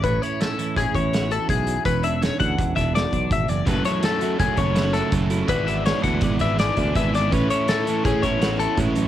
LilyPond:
<<
  \new Staff \with { instrumentName = "Clean electric guitar" } { \time 5/4 \key a \major \tempo 4 = 165 b'8 cis''8 a'4 gis'8 cis''4 a'8 gis'4 | b'8 e''8 cis''8 fis''4 e''8 d''4 e''8 d''8 | b'8 cis''8 a'4 gis'8 cis''4 a'8 r4 | b'8 e''8 cis''8 fis''4 e''8 d''4 e''8 d''8 |
b'8 cis''8 a'4 gis'8 cis''4 a'8 r4 | }
  \new Staff \with { instrumentName = "Overdriven electric guitar" } { \time 5/4 \key a \major r1 r4 | r1 r4 | <fis cis' fis' a'>8 <cis' fis' a'>8 <fis cis' fis' a'>8 <fis cis' fis' a'>8 <fis cis' fis' a'>8 <cis' fis' a'>8 <fis cis' fis' a'>8 <cis' fis' a'>8 <fis cis' fis' a'>8 <cis' fis' a'>8 | <gis b e' b' d''>8 <e' b' d''>8 <b e' b' d''>8 <gis b e' b' d''>8 <b e' b' d''>8 <e' b' d''>8 <gis b e' b' d''>8 <e' b' d''>8 <gis b e' b' d''>8 <e' b' d''>8 |
<a cis' e' a' cis''>8 <e' a' cis''>8 <cis' e' a' cis''>8 <a cis' e' a' cis''>8 <cis' e' a' cis''>8 <e' a' cis''>8 <a cis' e' a' cis''>8 <e' a' cis''>8 <a cis' e' a' cis''>8 <e' a' cis''>8 | }
  \new Staff \with { instrumentName = "Clean electric guitar" } { \time 5/4 \key a \major << { cis'8 e'8 cis'8 e'8 cis'8 e'8 fis'8 e'4. | cis'8 d'8 cis'8 d'4 d'8 fis'8 d'4. | a8 e'8 a8 e'8 a8 e'8 e'16 fis'16 e'8 a8 e'8 | <e d' fis'>8 d'4 d'4 d'8 gis'8 d'4 d'8 |
cis'8 e'8 cis'8 e'8 cis'8 e'8 fis'8 e'4. | } \\ { <a, e>4. e4 e,4. gis,8 fis,8 | e,4. e4 b,2 e,8 | fis,4. fis4 cis4. fis,4 | gis,4. e4 gis,4. gis,4 |
a,4. e4 e,4. gis,8 fis,8 | } >> }
  \new Staff \with { instrumentName = "Fingered electric bass" } { \clef bass \time 5/4 \key a \major a,,8 r4. a,,16 r16 a,,4. b,,4 | e,,4. d,8 e,,8 e,,4 b,,8 gis,,8 fis,,8 | fis,,8 r4. fis,,16 r16 fis,,4. fis,,4 | gis,,4. d,8 gis,,8 gis,,4 d,8 gis,,4 |
a,,8 r4. a,,16 r16 a,,4. a,,4 | }
  \new DrumStaff \with { instrumentName = "Drums" } \drummode { \time 5/4 <hh bd>8 hh8 <hh sn>8 hh8 <hh bd sn>8 <hh bd>8 <hh sn>8 hh8 <hh bd>8 hh8 | <hh bd>8 hh8 <hh sn>8 <hh bd>8 <hh bd>8 <hh bd sn>8 <hh sn>8 <hh bd>8 <hh bd>8 hh8 | <hh bd>8 <hh sn>8 <hh sn>8 hh8 <hh bd>8 <hh bd>8 <hh sn>8 <hh sn>8 <hh bd>8 hh8 | <hh bd>8 hh8 <hh sn>8 <hh bd sn>8 <hh bd>8 <hh bd sn>8 <hh sn>8 <hh bd>8 <hh bd>8 <hh sn>8 |
<hh bd>8 hh8 <hh sn>8 hh8 <hh bd>8 <hh bd sn>8 <hh sn>8 hh8 <hh bd>8 hh8 | }
>>